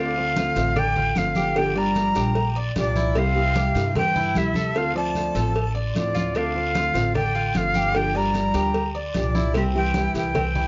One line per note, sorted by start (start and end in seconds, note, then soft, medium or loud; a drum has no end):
0.00 0.50 D2 medium
0.00 0.16 D3 medium
0.00 0.76 D3 loud
0.00 0.16 A3 medium
0.00 0.17 C4 medium
0.00 0.35 D4 medium
0.00 0.16 F4 medium
0.00 0.80 F5 loud
0.16 0.36 A3 medium
0.16 0.36 C4 medium
0.16 0.36 F4 medium
0.16 high conga soft
0.36 0.56 D3 medium
0.36 0.56 A3 medium
0.36 0.56 C4 medium
0.36 0.75 F4 medium
0.36 0.55 F4 medium
0.36 cowbell medium
0.36 high conga loud
0.36 short guiro medium
0.56 1.12 A1 loud
0.56 0.75 A3 medium
0.56 0.75 C4 medium
0.56 0.75 F4 medium
0.56 cowbell medium
0.56 high conga soft
0.56 short guiro medium
0.76 1.16 D3 loud
0.76 0.96 D4 medium
0.76 1.19 G5 loud
0.76 muted nylon-string guitar stroke medium
0.76 cowbell medium
0.76 high conga soft
0.76 low conga medium
0.76 long guiro medium
0.96 1.35 F4 medium
0.96 high conga soft
0.96 low conga medium
1.15 2.10 G1 medium
1.15 1.55 D3 medium
1.15 1.56 D3 medium
1.15 1.55 A3 medium
1.15 1.56 C4 medium
1.15 1.56 F4 medium
1.15 1.59 F5 loud
1.15 cowbell medium
1.15 high conga medium
1.15 short guiro medium
1.35 1.75 G4 medium
1.35 high conga medium
1.35 short guiro medium
1.55 1.75 D3 medium
1.55 1.77 D3 loud
1.55 1.75 F3 medium
1.55 1.76 A#3 medium
1.55 1.75 D4 medium
1.55 1.74 G4 medium
1.55 1.79 G5 loud
1.55 cowbell loud
1.55 high conga soft
1.55 long guiro medium
1.76 1.95 F3 medium
1.76 2.55 G3 loud
1.76 1.95 A#3 medium
1.76 1.95 D4 medium
1.76 1.95 G4 medium
1.76 2.14 D5 medium
1.76 2.57 A#5 loud
1.76 high conga soft
1.95 2.15 F3 medium
1.95 2.15 A#3 medium
1.95 2.15 D4 medium
1.95 2.14 G4 medium
1.95 cowbell medium
1.95 high conga medium
1.95 short guiro medium
2.15 2.71 A#1 medium
2.15 2.35 F3 medium
2.15 2.35 A#3 medium
2.15 2.35 D4 medium
2.15 2.34 G4 medium
2.15 2.55 G4 medium
2.15 cowbell medium
2.15 short guiro medium
2.35 muted nylon-string guitar stroke medium
2.35 cowbell medium
2.35 high conga soft
2.35 long guiro medium
2.56 2.94 D5 medium
2.56 high conga soft
2.76 3.69 C2 loud
2.76 3.19 A#2 medium
2.76 3.15 F3 medium
2.76 3.15 A#3 medium
2.76 3.15 D4 medium
2.76 3.15 G4 medium
2.76 3.20 D5 loud
2.76 cowbell medium
2.76 high conga loud
2.76 short guiro medium
2.96 3.15 E4 medium
2.96 high conga medium
2.96 short guiro medium
3.15 3.35 C3 medium
3.15 3.96 C3 loud
3.15 3.35 G3 medium
3.15 3.35 A#3 medium
3.15 3.55 C4 medium
3.15 3.35 E4 medium
3.15 3.34 G4 medium
3.15 3.97 F5 loud
3.15 cowbell loud
3.15 long guiro medium
3.35 3.54 G3 medium
3.35 3.55 A#3 medium
3.35 3.55 E4 medium
3.35 3.54 G4 medium
3.35 high conga soft
3.55 3.75 G3 medium
3.55 3.75 A#3 medium
3.55 3.75 E4 medium
3.55 3.94 G4 medium
3.55 3.74 G4 medium
3.55 cowbell medium
3.55 high conga loud
3.55 short guiro medium
3.75 4.31 G2 loud
3.75 3.94 G3 medium
3.75 3.95 A#3 medium
3.75 3.95 E4 medium
3.75 3.94 G4 medium
3.75 cowbell medium
3.75 high conga soft
3.75 short guiro medium
3.95 4.38 E3 loud
3.95 4.15 C4 medium
3.95 4.39 G5 loud
3.95 muted nylon-string guitar stroke medium
3.95 cowbell loud
3.95 high conga soft
3.95 low conga medium
3.95 long guiro medium
4.16 4.54 E4 medium
4.16 high conga soft
4.16 low conga medium
4.35 5.29 D2 medium
4.35 4.77 C3 medium
4.35 4.74 G3 medium
4.35 4.75 A#3 medium
4.35 4.75 E4 medium
4.35 4.75 G4 medium
4.35 4.79 E5 loud
4.35 cowbell medium
4.35 high conga medium
4.35 short guiro medium
4.54 4.94 A4 medium
4.54 high conga medium
4.54 short guiro medium
4.75 4.94 D3 medium
4.75 4.95 D3 medium
4.75 4.95 A3 medium
4.75 4.95 C4 medium
4.75 4.94 F4 medium
4.75 4.96 F5 loud
4.75 cowbell loud
4.75 high conga soft
4.75 long guiro medium
4.95 5.71 F3 medium
4.95 5.15 A3 medium
4.95 5.15 C4 medium
4.95 5.14 F4 medium
4.95 5.34 D5 medium
4.95 5.72 A5 loud
4.95 high conga soft
5.15 5.35 D3 soft
5.15 5.35 A3 medium
5.15 5.35 C4 medium
5.15 5.34 F4 medium
5.15 cowbell medium
5.15 high conga medium
5.15 short guiro medium
5.35 5.91 A1 loud
5.35 5.55 A3 medium
5.35 5.55 C4 medium
5.35 5.54 F4 medium
5.35 5.74 A4 medium
5.35 cowbell medium
5.35 short guiro medium
5.55 muted nylon-string guitar stroke medium
5.55 cowbell loud
5.55 high conga soft
5.55 long guiro medium
5.75 6.14 D5 medium
5.75 high conga soft
5.95 6.89 D2 medium
5.95 6.37 A2 medium
5.95 6.33 D3 medium
5.95 6.34 A3 medium
5.95 6.35 C4 medium
5.95 6.35 F4 medium
5.95 6.39 D5 loud
5.95 cowbell medium
5.95 high conga medium
5.95 short guiro medium
6.15 6.34 F4 medium
6.15 high conga medium
6.15 short guiro medium
6.34 6.54 D3 medium
6.34 7.15 D3 medium
6.34 6.54 A3 medium
6.34 6.55 C4 medium
6.34 6.74 D4 medium
6.34 6.54 F4 medium
6.34 7.16 F5 loud
6.34 cowbell loud
6.34 high conga soft
6.34 long guiro medium
6.55 6.74 A3 medium
6.55 6.75 C4 medium
6.55 6.74 F4 medium
6.55 high conga soft
6.75 6.94 D3 soft
6.75 6.94 A3 medium
6.75 6.94 C4 medium
6.75 7.14 F4 medium
6.75 6.93 F4 medium
6.75 cowbell medium
6.75 high conga loud
6.75 short guiro medium
6.94 7.51 A1 loud
6.94 7.14 A3 medium
6.94 7.14 C4 medium
6.94 7.14 F4 medium
6.94 cowbell medium
6.94 high conga soft
6.94 short guiro medium
7.14 7.55 D3 medium
7.14 7.34 D4 medium
7.14 7.59 G5 loud
7.14 muted nylon-string guitar stroke medium
7.14 cowbell loud
7.14 high conga soft
7.14 low conga medium
7.14 long guiro medium
7.35 7.74 F4 medium
7.35 high conga soft
7.54 8.49 G1 medium
7.54 7.93 D3 medium
7.54 7.95 D3 medium
7.54 7.94 A3 medium
7.54 7.95 C4 medium
7.54 7.95 F4 medium
7.54 7.98 F5 loud
7.54 cowbell medium
7.54 high conga medium
7.54 short guiro medium
7.74 8.14 G4 medium
7.74 high conga medium
7.74 short guiro medium
7.94 8.14 D3 medium
7.94 8.18 D3 medium
7.94 8.14 F3 medium
7.94 8.15 A#3 medium
7.94 8.14 D4 medium
7.94 8.13 G4 loud
7.94 8.18 G5 loud
7.94 cowbell loud
7.94 high conga soft
7.94 long guiro medium
8.14 8.33 F3 medium
8.14 8.96 G3 medium
8.14 8.34 A#3 medium
8.14 8.34 D4 medium
8.14 8.34 G4 medium
8.14 8.54 D5 medium
8.14 8.96 A#5 loud
8.14 high conga soft
8.34 8.54 F3 medium
8.34 8.54 A#3 medium
8.34 8.53 D4 medium
8.34 8.53 G4 medium
8.34 cowbell medium
8.34 high conga medium
8.34 short guiro medium
8.54 9.11 D2 medium
8.54 8.73 F3 medium
8.54 8.74 A#3 medium
8.54 8.74 D4 medium
8.54 8.74 G4 medium
8.54 8.94 G4 medium
8.54 cowbell medium
8.54 short guiro medium
8.74 muted nylon-string guitar stroke medium
8.74 cowbell loud
8.74 high conga soft
8.74 long guiro medium
8.95 9.34 D5 medium
8.95 high conga soft
9.14 10.09 C2 loud
9.14 9.53 A#2 medium
9.14 9.54 F3 medium
9.14 9.54 A#3 medium
9.14 9.55 D4 medium
9.14 9.55 G4 medium
9.14 9.53 D5 medium
9.14 cowbell medium
9.14 high conga medium
9.14 short guiro medium
9.35 9.54 E4 medium
9.35 high conga medium
9.35 short guiro medium
9.54 9.74 C3 medium
9.54 9.66 C3 medium
9.54 9.74 G3 medium
9.54 9.74 A#3 medium
9.54 9.94 C4 loud
9.54 9.74 E4 medium
9.54 9.73 G4 medium
9.54 9.63 E5 loud
9.54 cowbell loud
9.54 high conga soft
9.54 long guiro medium
9.74 10.12 E3 medium
9.74 9.93 G3 medium
9.74 9.94 A#3 medium
9.74 9.94 E4 medium
9.74 9.94 G4 medium
9.74 10.13 G5 loud
9.74 high conga soft
9.94 10.14 G3 medium
9.94 10.15 A#3 medium
9.94 10.34 E4 medium
9.94 10.14 E4 medium
9.94 10.13 G4 medium
9.94 cowbell medium
9.94 high conga loud
9.94 short guiro medium
10.14 10.68 C2 loud
10.14 10.68 E3 medium
10.14 10.34 G3 medium
10.14 10.34 A#3 medium
10.14 10.34 E4 medium
10.14 10.34 G4 medium
10.14 10.68 G5 loud
10.14 cowbell medium
10.14 high conga soft
10.14 short guiro medium
10.34 10.55 C4 medium
10.34 muted nylon-string guitar stroke medium
10.34 cowbell loud
10.34 high conga soft
10.34 low conga medium
10.34 long guiro medium
10.55 10.68 E4 medium
10.55 high conga soft
10.55 low conga medium